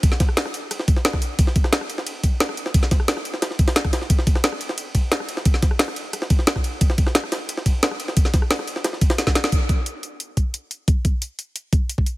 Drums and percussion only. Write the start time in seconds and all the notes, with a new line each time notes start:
0.03 kick, closed hi-hat, ride, ride bell
0.12 snare, ride
0.20 kick, snare, closed hi-hat, ride, ride bell
0.29 cross-stick
0.37 snare, closed hi-hat, open hi-hat, ride bell
0.46 cross-stick, snare
0.54 closed hi-hat, ride, ride bell
0.71 cross-stick, closed hi-hat, ride, ride bell
0.79 snare
0.88 kick, closed hi-hat, ride, ride bell
0.96 snare
1.05 snare, closed hi-hat, ride, ride bell
1.13 kick, cross-stick, snare
1.22 closed hi-hat, ride, ride bell
1.39 kick, closed hi-hat, ride, ride bell
1.47 snare
1.56 kick, closed hi-hat, ride, ride bell
1.64 cross-stick, snare
1.73 snare, closed hi-hat, ride, ride bell
1.81 cross-stick
1.90 closed hi-hat, ride, ride bell
1.98 snare
2.07 closed hi-hat, ride, ride bell
2.23 kick, closed hi-hat, ride, ride bell
2.40 snare, closed hi-hat, ride, ride bell
2.49 cross-stick
2.57 closed hi-hat, ride, ride bell
2.66 snare
2.74 kick, closed hi-hat, ride, ride bell
2.83 snare, ride
2.91 kick, snare, closed hi-hat, ride, ride bell
3.00 cross-stick
3.08 snare, closed hi-hat, open hi-hat, ride bell
3.17 cross-stick, snare
3.25 closed hi-hat, ride, ride bell
3.34 snare
3.42 cross-stick, snare, closed hi-hat, ride, ride bell
3.51 snare
3.59 kick, closed hi-hat, ride, ride bell
3.68 snare, ride
3.76 snare, closed hi-hat, ride bell
3.84 kick, cross-stick, ride
3.93 snare, closed hi-hat, ride, ride bell
4.02 snare
4.10 kick, closed hi-hat, ride, ride bell
4.19 snare
4.27 kick, closed hi-hat, ride, ride bell
4.35 cross-stick, snare
4.44 snare, closed hi-hat, ride, ride bell
4.52 cross-stick
4.61 closed hi-hat, ride, ride bell
4.69 snare
4.78 closed hi-hat, ride, ride bell
4.95 kick, closed hi-hat, ride, ride bell
5.12 snare, closed hi-hat, ride, ride bell
5.20 cross-stick
5.29 closed hi-hat, ride, ride bell
5.37 snare
5.45 kick, closed hi-hat, ride, ride bell
5.54 snare, ride
5.62 kick, snare, closed hi-hat, ride, ride bell
5.71 cross-stick
5.79 snare, closed hi-hat, open hi-hat, ride bell
5.88 cross-stick, snare
5.96 closed hi-hat, ride, ride bell
6.13 cross-stick, closed hi-hat, ride, ride bell
6.22 snare
6.30 kick, closed hi-hat, ride, ride bell
6.39 snare
6.47 snare, closed hi-hat, ride, ride bell
6.56 kick, cross-stick, snare
6.64 closed hi-hat, ride, ride bell
6.81 kick, closed hi-hat, ride, ride bell
6.90 snare
6.98 kick, closed hi-hat, ride, ride bell
7.07 cross-stick, snare
7.15 snare, closed hi-hat, ride, ride bell
7.23 cross-stick
7.32 snare, closed hi-hat, ride, ride bell
7.49 closed hi-hat, ride, ride bell
7.57 snare
7.66 kick, closed hi-hat, ride, ride bell
7.83 snare, closed hi-hat, ride, ride bell
7.91 cross-stick
8.00 closed hi-hat, ride, ride bell
8.08 snare
8.17 kick, closed hi-hat, ride, ride bell
8.25 snare, ride
8.34 kick, snare, closed hi-hat, ride, ride bell
8.42 cross-stick
8.51 snare, closed hi-hat, open hi-hat, ride bell
8.59 cross-stick, snare
8.68 closed hi-hat, ride, ride bell
8.76 snare
8.84 cross-stick, snare, closed hi-hat, ride, ride bell
8.93 snare
9.01 kick, closed hi-hat, ride, ride bell
9.10 snare, ride
9.18 snare, closed hi-hat, ride bell
9.27 kick, snare, ride
9.35 snare, closed hi-hat, ride, ride bell
9.44 snare
9.52 kick, closed hi-hat
9.69 kick, closed hi-hat
9.86 closed hi-hat
10.03 closed hi-hat
10.20 closed hi-hat
10.37 kick, closed hi-hat
10.54 closed hi-hat
10.71 closed hi-hat
10.88 kick, closed hi-hat
11.05 kick, closed hi-hat
11.22 closed hi-hat
11.39 closed hi-hat
11.56 closed hi-hat
11.73 kick, closed hi-hat
11.89 closed hi-hat
11.98 kick
12.06 closed hi-hat